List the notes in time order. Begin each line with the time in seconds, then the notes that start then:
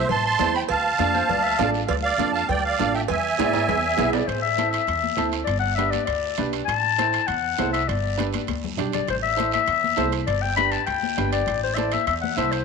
0.09 A1 A5 C6, cowbell, low conga, long guiro
0.25 A5 C6
0.39 E2 C4 E4 C5, cowbell, high conga, low conga, low timbale, short guiro
0.54 G5 B5, short guiro
0.69 D2 F5 A5, cowbell, long guiro
0.99 F2 D4 F4 A4 D5, cowbell, high conga, short guiro
1.15 C5, high conga, short guiro
1.29 D2 D5, cowbell, low conga, long guiro
1.43 E5
1.59 A1 D4 F4 A4 D5, cowbell, high conga, low conga, low timbale, short guiro
1.74 short guiro
1.87 D2 D5 F5, cowbell, low conga, long guiro
2.02 D5 F5
2.18 F2 D4 F4 A4, cowbell, high conga, short guiro
2.32 F5 A5, short guiro
2.49 D2 D5 G5, cowbell, low conga, long guiro
2.64 D5 F5
2.79 A1 D4 F4 A4, cowbell, high conga, low conga, short guiro
2.94 E5 G5, short guiro
3.08 E2 E5 G#5, cowbell, low conga, long guiro
3.38 G#2 B3 E4 G#4 D5, cowbell, high conga, high timbale, short guiro
3.53 high conga, high timbale, short guiro
3.68 E2 E5, cowbell, low conga, low timbale, long guiro
3.85 E5
3.97 B1 B3 E4 G#4, cowbell, high conga, low conga, low timbale, short guiro
4.13 D5, low timbale, short guiro
4.27 A1 C5, high timbale, long guiro
4.42 E5, high conga
4.57 C4 E4 A4, high conga, high timbale, short guiro
4.70 E5, high timbale, short guiro
4.87 E2, high conga, high timbale, long guiro
5.03 high conga
5.16 D2 C4 E4 A4, high conga, high timbale, short guiro
5.32 high timbale, short guiro
5.44 G1 D5, high timbale, long guiro
5.59 F#5
5.64 high conga
5.75 D4 G4 B4 E5, high conga, high timbale, short guiro
5.91 D5, high conga, high timbale, short guiro
6.05 D2 D5, high conga, high timbale, long guiro
6.37 B1 D4 G4 B4, high conga, high timbale, short guiro
6.53 high timbale, short guiro
6.65 A1 A5, high timbale, long guiro
6.84 high conga
6.98 E4 A4 C5, high conga, high timbale, short guiro
7.13 high timbale, short guiro
7.27 E2 F#5, high conga, high timbale, long guiro
7.58 C2 E4 A4 C5, high conga, high timbale, low timbale, short guiro
7.73 E5, high timbale, short guiro
7.88 G1 D5, high timbale, long guiro
8.05 high conga
8.17 D4 G4 B4, high conga, high timbale, short guiro
8.33 high conga, high timbale, short guiro
8.47 D2, high conga, high timbale, long guiro
8.64 low conga
8.77 B1 D4 G4 D5, low conga, high timbale, short guiro
8.92 D5, low conga, high timbale, short guiro
9.08 A1 C5, high timbale, long guiro
9.22 E5, high conga
9.37 E4 A4 C5, high conga, high timbale, short guiro
9.51 E5, high conga, high timbale, short guiro
9.66 E2, high conga, high timbale, long guiro
9.84 high conga
9.97 C2 E4 A4 C5, high conga, high timbale, low timbale, short guiro
10.12 high timbale, short guiro
10.27 G1 D5, high timbale, long guiro
10.42 G5, high conga
10.56 D4 G4 B4 B5, high conga, high timbale, short guiro
10.72 A5, high timbale, short guiro
10.86 D2 G5, high conga, high timbale, long guiro
11.03 high conga
11.16 G1 D4 G4 B4, high conga, high timbale, short guiro
11.32 D5, high timbale, short guiro
11.46 A1, high timbale, long guiro
11.63 C5, high conga
11.74 E4 A4 C5 D5 E5, high timbale, short guiro
11.78 high conga
11.92 E5, high conga, high timbale, short guiro
12.07 E2 E5, high conga, high timbale, long guiro
12.22 F#5, high conga
12.37 C2 E4 A4 C5 E5, high conga, high timbale, short guiro
12.52 C5, high timbale, short guiro